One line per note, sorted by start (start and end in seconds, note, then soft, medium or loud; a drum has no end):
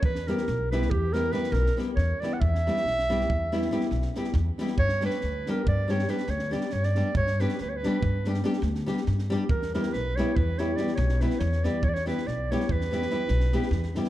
0.03 0.30 E2 medium
0.03 0.29 B4 medium
0.03 kick medium
0.15 snare soft
0.27 0.41 G3 medium
0.27 0.41 B3 medium
0.27 0.41 E4 medium
0.27 0.42 G4 medium
0.27 0.71 A#4 medium
0.27 snare soft
0.37 snare soft
0.47 0.92 B1 medium
0.47 snare soft
0.71 0.85 G3 medium
0.71 0.85 B3 medium
0.71 0.86 E4 medium
0.71 0.86 G4 medium
0.71 0.92 B4 medium
0.71 snare soft
0.82 snare soft
0.90 1.29 E2 loud
0.90 1.14 G4 medium
0.90 kick medium
1.13 1.26 G3 medium
1.13 1.27 B3 medium
1.13 1.27 E4 medium
1.13 1.28 G4 medium
1.13 1.34 A#4 loud
1.13 snare soft
1.32 1.45 G3 medium
1.32 1.45 B3 medium
1.32 1.46 E4 soft
1.32 1.46 G4 medium
1.32 1.54 B4 medium
1.32 snare soft
1.44 snare soft
1.52 1.67 B1 loud
1.52 1.77 A#4 loud
1.52 snare soft
1.66 snare soft
1.77 1.90 G3 medium
1.77 1.90 B3 medium
1.77 1.91 E4 medium
1.77 1.91 G4 medium
1.77 snare soft
1.96 2.12 E2 medium
1.96 2.22 C#5 medium
1.96 kick soft
1.96 snare soft
2.20 2.35 G3 medium
2.20 2.35 B3 medium
2.20 2.35 E4 medium
2.20 2.36 G4 medium
2.20 2.35 D5 medium
2.20 snare soft
2.33 2.42 F#5 medium
2.40 2.68 E2 medium
2.40 4.34 E5 loud
2.40 kick medium
2.55 snare soft
2.67 2.79 G3 medium
2.67 2.80 B3 medium
2.67 2.80 E4 medium
2.67 2.81 G4 medium
2.67 snare soft
2.77 snare soft
2.85 3.30 B1 medium
2.85 snare soft
2.99 snare soft
3.10 3.23 G3 medium
3.10 3.23 B3 medium
3.10 3.24 E4 medium
3.10 3.24 G4 medium
3.10 snare soft
3.20 snare soft
3.30 3.66 E2 medium
3.30 kick medium
3.52 3.65 G3 medium
3.52 3.65 B3 medium
3.52 3.65 E4 medium
3.52 3.65 G4 medium
3.52 snare soft
3.62 snare soft
3.71 3.84 G3 medium
3.71 3.84 B3 medium
3.71 3.84 E4 medium
3.71 3.85 G4 medium
3.71 snare soft
3.81 snare soft
3.91 4.06 B1 medium
3.91 snare soft
4.02 snare soft
4.15 4.29 G3 medium
4.15 4.29 B3 medium
4.15 4.29 E4 medium
4.15 4.29 G4 medium
4.15 snare soft
4.24 snare soft
4.33 4.50 E2 loud
4.33 kick medium
4.33 snare soft
4.58 4.72 G3 medium
4.58 4.73 B3 medium
4.58 4.73 E4 medium
4.58 4.73 G4 medium
4.58 snare soft
4.67 snare soft
4.78 5.06 G2 medium
4.78 5.02 C#5 loud
4.78 kick medium
4.89 snare soft
5.01 5.15 G3 medium
5.01 5.16 B3 medium
5.01 5.16 D4 medium
5.01 5.16 G4 medium
5.01 snare soft
5.06 5.52 B4 medium
5.10 snare soft
5.21 5.50 D2 medium
5.21 snare soft
5.46 5.61 G3 medium
5.46 5.61 B3 medium
5.46 5.61 D4 medium
5.46 5.61 G4 medium
5.46 snare soft
5.50 5.68 A#4 medium
5.67 6.03 G2 loud
5.67 5.92 D5 medium
5.67 kick medium
5.88 6.01 G3 medium
5.88 6.02 B3 medium
5.88 6.02 D4 medium
5.88 6.02 G4 medium
5.88 6.11 C#5 medium
5.88 snare soft
5.99 snare soft
6.08 6.21 G3 medium
6.08 6.21 B3 soft
6.08 6.22 D4 medium
6.08 6.22 G4 medium
6.08 6.31 B4 medium
6.08 snare soft
6.18 snare soft
6.27 6.54 D2 loud
6.27 6.54 C#5 medium
6.27 snare soft
6.39 snare soft
6.51 6.64 G3 medium
6.51 6.64 B3 medium
6.51 6.65 D4 medium
6.51 6.65 G4 medium
6.51 6.74 D5 medium
6.51 snare soft
6.61 snare soft
6.70 6.99 G2 medium
6.70 6.86 C#5 loud
6.70 snare soft
6.83 7.16 D5 loud
6.83 snare soft
6.95 7.09 G3 medium
6.95 7.09 B3 medium
6.95 7.09 D4 medium
6.95 7.09 G4 medium
6.95 snare soft
7.15 7.43 G2 medium
7.15 7.42 C#5 loud
7.15 kick medium
7.27 snare soft
7.39 7.53 G3 medium
7.39 7.53 B3 medium
7.39 7.53 D4 medium
7.39 7.54 G4 medium
7.39 7.60 B4 medium
7.39 snare soft
7.49 snare soft
7.58 7.86 D2 medium
7.58 7.71 B4 medium
7.58 snare soft
7.69 7.78 C#5 medium
7.76 8.45 B4 medium
7.83 7.97 G3 medium
7.83 7.97 B3 medium
7.83 7.97 D4 medium
7.83 7.98 G4 medium
7.83 snare soft
8.03 8.39 G2 medium
8.03 kick medium
8.24 8.38 G3 medium
8.24 8.38 B3 soft
8.24 8.38 D4 medium
8.24 8.39 G4 medium
8.24 snare soft
8.34 snare soft
8.44 8.56 G3 medium
8.44 8.56 B3 medium
8.44 8.57 D4 medium
8.44 8.57 G4 medium
8.44 snare soft
8.53 snare soft
8.62 8.89 D2 loud
8.62 snare soft
8.75 snare soft
8.86 8.99 G3 medium
8.86 9.00 B3 medium
8.86 9.00 D4 medium
8.86 9.00 G4 medium
8.86 snare soft
8.97 snare soft
9.06 9.33 G2 medium
9.06 snare soft
9.19 snare soft
9.30 9.43 G3 medium
9.30 9.43 B3 medium
9.30 9.44 D4 medium
9.30 9.44 G4 medium
9.30 snare soft
9.49 9.76 E2 medium
9.49 9.73 A#4 medium
9.49 kick medium
9.62 snare soft
9.74 9.87 G3 medium
9.74 9.87 B3 medium
9.74 9.87 E4 medium
9.74 9.88 G4 medium
9.74 9.95 A#4 medium
9.74 snare soft
9.83 snare soft
9.93 10.21 B1 medium
9.93 10.17 B4 medium
9.93 snare soft
10.16 10.30 G3 medium
10.16 10.31 B3 medium
10.16 10.31 E4 medium
10.16 10.31 G4 medium
10.16 10.37 C#5 medium
10.16 snare soft
10.36 10.73 E2 medium
10.36 10.60 B4 medium
10.36 kick medium
10.58 10.71 G3 medium
10.58 10.71 B3 medium
10.58 10.72 E4 medium
10.58 10.72 G4 medium
10.58 10.78 C#5 medium
10.58 snare soft
10.77 10.90 G3 medium
10.77 10.90 B3 medium
10.77 10.91 E4 medium
10.77 10.91 G4 medium
10.77 10.94 D5 medium
10.77 snare soft
10.87 snare soft
10.95 11.23 B1 loud
10.95 11.22 C#5 medium
10.95 snare soft
11.09 snare soft
11.20 11.33 G3 medium
11.20 11.34 B3 medium
11.20 11.34 E4 medium
11.20 11.34 G4 medium
11.20 11.41 B4 medium
11.20 snare soft
11.30 snare soft
11.39 11.66 E2 loud
11.39 11.66 C#5 medium
11.39 snare soft
11.52 snare soft
11.64 11.77 G3 medium
11.64 11.77 B3 medium
11.64 11.77 E4 medium
11.64 11.77 G4 medium
11.64 11.86 D5 medium
11.64 snare soft
11.83 12.10 E2 medium
11.83 11.91 C#5 loud
11.83 kick medium
11.89 11.96 D5 medium
11.94 12.07 C#5 medium
11.94 snare soft
12.06 12.19 G3 medium
12.06 12.19 B3 medium
12.06 12.20 E4 medium
12.06 12.20 G4 medium
12.06 12.29 B4 medium
12.06 snare soft
12.17 snare soft
12.27 12.53 B1 medium
12.27 12.53 D5 medium
12.27 snare soft
12.51 12.64 G3 medium
12.51 12.64 B3 medium
12.51 12.64 E4 medium
12.51 12.64 G4 medium
12.51 12.73 C#5 medium
12.51 snare soft
12.60 snare soft
12.69 13.05 E2 medium
12.69 13.97 B4 loud
12.69 kick medium
12.81 snare soft
12.91 13.03 G3 medium
12.91 13.04 B3 medium
12.91 13.04 E4 medium
12.91 13.05 G4 medium
12.91 snare soft
13.02 snare soft
13.10 13.22 G3 medium
13.10 13.23 B3 soft
13.10 13.23 E4 soft
13.10 13.23 G4 medium
13.10 snare soft
13.28 13.55 B1 loud
13.28 snare soft
13.40 snare soft
13.52 13.65 G3 medium
13.52 13.65 B3 medium
13.52 13.66 E4 medium
13.52 13.66 G4 medium
13.52 snare soft
13.62 snare soft
13.71 13.97 E2 medium
13.71 kick soft
13.71 snare soft
13.83 snare soft
13.95 14.08 G3 medium
13.95 14.09 B3 medium
13.95 14.09 E4 medium
13.95 14.09 G4 medium
13.95 snare soft
14.04 snare soft